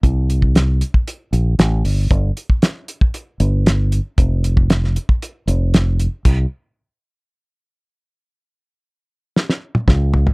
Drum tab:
CC |----------------|----------------|----------------|x---------------|
HH |x-x-x-x-x-x-x-o-|x-x-x-x-x-x-x-x-|x-x-x-x-x-x-x-x-|x---------------|
SD |----o-------o---|----o-------o---|----oo------o---|----------------|
T1 |----------------|----------------|----------------|----------------|
T2 |----------------|----------------|----------------|----------------|
FT |----------------|----------------|----------------|----------------|
BD |o--o---o--------|o--o---o--------|o--o---o--------|o---------------|

CC |----------------|
HH |----------------|
SD |--------oo--o---|
T1 |-----------o----|
T2 |------------o---|
FT |--------------oo|
BD |------------o---|